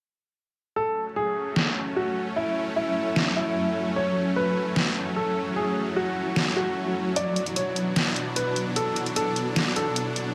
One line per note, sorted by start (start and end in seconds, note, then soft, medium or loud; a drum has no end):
0.76 7.16 F#3 medium
0.76 10.34 F#3 medium
0.76 7.12 A3 medium
0.76 7.12 C#4 medium
0.76 1.03 A4 medium
1.16 10.34 E4 medium
1.16 1.88 G#4 medium
1.28 10.34 F#4 medium
1.56 snare loud
1.96 2.23 F#4 medium
2.07 7.16 C#5 medium
2.36 2.63 E4 medium
2.76 3.28 E4 medium
3.16 snare loud
3.36 3.88 E4 medium
3.96 4.23 C#5 medium
4.36 5.08 B4 medium
4.76 snare loud
5.16 5.43 A4 medium
5.56 5.83 G#4 medium
5.96 6.48 F#4 medium
6.36 snare loud
6.56 7.08 F#4 medium
7.16 10.34 B2 medium
7.16 10.34 B3 medium
7.16 10.34 D4 medium
7.16 7.43 D5 medium
7.16 closed hi-hat medium
7.36 closed hi-hat soft
7.46 closed hi-hat soft
7.56 8.28 C#5 medium
7.56 closed hi-hat medium
7.76 closed hi-hat soft
7.96 snare loud
7.96 closed hi-hat medium
8.16 10.34 D5 medium
8.16 closed hi-hat medium
8.36 8.63 B4 medium
8.36 closed hi-hat medium
8.56 closed hi-hat soft
8.76 9.03 A4 medium
8.76 closed hi-hat medium
8.96 closed hi-hat soft
9.06 closed hi-hat soft
9.16 9.68 A4 medium
9.16 closed hi-hat medium
9.36 closed hi-hat soft
9.56 snare loud
9.56 closed hi-hat medium
9.76 10.28 A4 medium
9.76 closed hi-hat medium
9.96 closed hi-hat medium
10.16 closed hi-hat soft